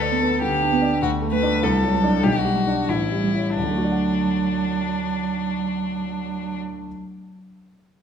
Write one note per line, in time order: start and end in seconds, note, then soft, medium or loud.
0.00 0.99 D2 soft
0.00 0.42 A4 medium
0.00 0.34 D5 soft
0.11 0.34 B3 soft
0.22 0.54 B3 soft
0.42 0.74 D3 soft
0.42 1.01 G4 medium
0.62 0.94 D4 soft
0.72 0.95 B3 medium
0.82 1.02 D5 soft
1.02 1.61 D2 soft
1.02 1.10 F#4 medium
1.22 1.54 A3 soft
1.31 1.54 A3 medium
1.31 1.64 B4 medium
1.43 1.61 D4 soft
1.43 1.61 D5 soft
1.62 2.22 C2 medium
1.62 2.25 A4 medium
1.83 2.16 F#3 soft
1.93 2.16 F#3 soft
2.03 2.22 D4 soft
2.03 2.22 D5 soft
2.23 2.86 B1 soft
2.23 2.40 G4 medium
2.39 2.90 F#4 medium
2.45 2.80 G3 soft
2.55 2.80 G3 soft
2.67 2.87 D4 soft
2.67 2.87 D5 soft
2.88 3.54 A1 soft
2.88 3.57 E4 soft
3.12 3.48 G3 soft
3.23 3.48 G3 soft
3.34 3.54 E4 soft
3.34 3.54 C#5 soft
3.56 6.57 D2 soft
3.56 6.56 F#3 soft
3.56 6.58 D4 soft
3.64 6.64 D3 soft
3.71 6.71 A3 soft
3.78 6.78 F#4 soft
3.84 6.85 D5 soft
3.92 6.93 F#5 soft